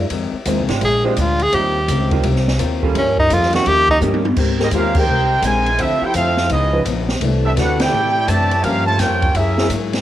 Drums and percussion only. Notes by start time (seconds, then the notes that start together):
0.10 ride
0.45 hi-hat pedal, ride
0.69 snare, ride
0.81 ride
1.17 hi-hat pedal, ride
1.39 ride
1.53 ride
1.88 hi-hat pedal, ride
2.11 kick, ride
2.23 ride
2.36 snare
2.48 snare
2.59 hi-hat pedal, ride
2.83 kick
2.95 ride
3.18 kick
3.30 hi-hat pedal, ride
3.43 snare
3.53 snare, ride
3.66 ride
3.89 kick
4.01 hi-hat pedal, high tom
4.14 high tom
4.25 high tom
4.37 kick, crash
4.59 snare
4.71 hi-hat pedal, ride
4.95 kick, crash
5.42 hi-hat pedal, ride
5.66 ride
5.79 ride
6.14 hi-hat pedal, ride
6.37 snare
6.49 ride
6.85 hi-hat pedal, ride
7.09 snare
7.21 ride
7.57 snare, hi-hat pedal, ride
7.80 snare, ride
8.28 hi-hat pedal, ride
8.51 ride
8.64 ride
8.99 snare, hi-hat pedal, ride
9.22 kick, ride
9.35 ride
9.58 snare
9.70 hi-hat pedal, ride
9.93 snare, ride